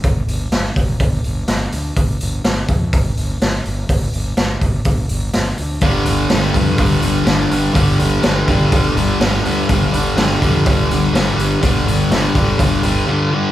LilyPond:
<<
  \new Staff \with { instrumentName = "Distorted electric guitar" } { \clef bass \time 4/4 \key c \dorian \tempo 4 = 124 r1 | r1 | r1 | <g, d g>8 <d g>8 <g, d g>8 <g, d g>8 <g, d g>8 <d g>8 <g, d g>8 <d g>8 |
<g, d g>8 <d g>8 <g, d g>8 <g, d g>8 <g, d g>8 <d g>8 <g, d g>8 <d g>8 | <g, d g>8 <d g>8 <g, d g>8 <g, d g>8 <g, d g>8 <d g>8 <g, d g>8 <d g>8 | <g, d g>8 <d g>8 <g, d g>8 <g, d g>8 <g, d g>8 <d g>8 <g, d g>8 <d g>8 | }
  \new Staff \with { instrumentName = "Fingered electric bass" } { \clef bass \time 4/4 \key c \dorian g,,8 g,,8 g,,8 g,,8 g,,8 g,,8 g,,8 d,8 | g,,8 g,,8 g,,8 f,8 g,,8 g,,8 g,,8 g,,8 | g,,8 g,,8 g,,8 g,,8 g,,8 g,,8 g,,8 d,8 | g,,8 g,,8 g,,8 f,8 g,,8 g,,8 g,,8 g,,8 |
g,,8 g,,8 g,,8 g,,8 g,,8 g,,8 g,,8 d,8 | g,,8 g,,8 g,,8 f,8 g,,8 g,,8 g,,8 g,,8 | g,,8 g,,8 g,,8 g,,8 g,,8 g,,8 r4 | }
  \new DrumStaff \with { instrumentName = "Drums" } \drummode { \time 4/4 <hho bd>8 hho8 <hho sn>8 <hho bd>8 <hho bd>8 hho8 <hho sn>8 hho8 | <hho bd>8 hho8 <hho sn>8 <hho bd>8 <hho bd>8 hho8 <hho sn>8 hho8 | <hho bd>8 hho8 <hho sn>8 <hho bd>8 <hho bd>8 hho8 <hho sn>8 hho8 | <hho bd>8 hho8 <hho sn>8 <hho bd>8 <hho bd>8 hho8 <hho sn>8 hho8 |
<hho bd>8 hho8 <hho sn>8 <hho bd>8 <hho bd>8 hho8 <hho sn>8 hho8 | <hho bd>8 hho8 <hho sn>8 <hho bd>8 <hho bd>8 hho8 <hho sn>8 hho8 | <hho bd>8 hho8 <hho sn>8 <hho bd>8 <hho bd>8 hho8 r4 | }
>>